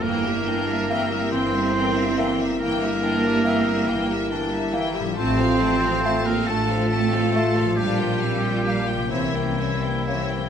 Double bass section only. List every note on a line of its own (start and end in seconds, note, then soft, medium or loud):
0.03 1.17 G1 medium
1.32 2.45 G1 medium
2.61 3.72 G1 medium
3.87 5.02 G1 medium
5.17 6.32 A1 medium
6.47 7.63 A1 medium
7.79 8.96 A#1 medium
9.12 10.39 C2 medium